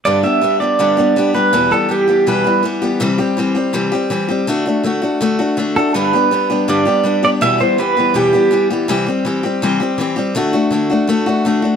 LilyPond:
<<
  \new Staff \with { instrumentName = "Pedal steel guitar" } { \time 4/4 \key g \major \tempo 4 = 163 d''8 e''4 d''2 b'8~ | b'8 a'8 g'4 b'4 r4 | r1 | r2. r8 a'8 |
b'2 d''4. d''8 | e''8 c''8 b'4 g'4. r8 | r1 | r1 | }
  \new Staff \with { instrumentName = "Steel-string acoustic guitar" } { \time 4/4 \key g \major <g, d g b d' g'>8 <g b d' g'>8 <g b d' g'>8 <g b d' g'>8 <g, d g b d' g'>8 <g b d' g'>8 <g b d' g'>8 <g b d' g'>8 | <e, b, e g b g'>8 <e g b g'>8 <e g b g'>8 <e g b g'>8 <e, b, e g b g'>8 <e g b g'>8 <e g b g'>8 <e g b g'>8 | <c e g c' g'>8 <g c' g'>8 <e g c' g'>8 <g c' g'>8 <c e g c' g'>8 <g c' g'>8 <e g c' g'>8 <g c' g'>8 | <d a d' fis'>8 <a d' fis'>8 <d a d' fis'>8 <a d' fis'>8 <d a d' fis'>8 <a d' fis'>8 <d a d' fis'>8 <a d' fis'>8 |
<g, d g b d' g'>8 <g b d' g'>8 <g b d' g'>8 <g b d' g'>8 <g, d g b d' g'>8 <g b d' g'>8 <g b d' g'>8 <g b d' g'>8 | <e, b, e g b g'>8 <e g b g'>8 <e g b g'>8 <e g b g'>8 <e, b, e g b g'>8 <e g b g'>8 <e g b g'>8 <e g b g'>8 | <c e g c' g'>8 <g c' g'>8 <e g c' g'>8 <g c' g'>8 <c e g c' g'>8 <g c' g'>8 <e g c' g'>8 <g c' g'>8 | <d a d' fis'>8 <a d' fis'>8 <d a d' fis'>8 <a d' fis'>8 <d a d' fis'>8 <a d' fis'>8 <d a d' fis'>8 <a d' fis'>8 | }
>>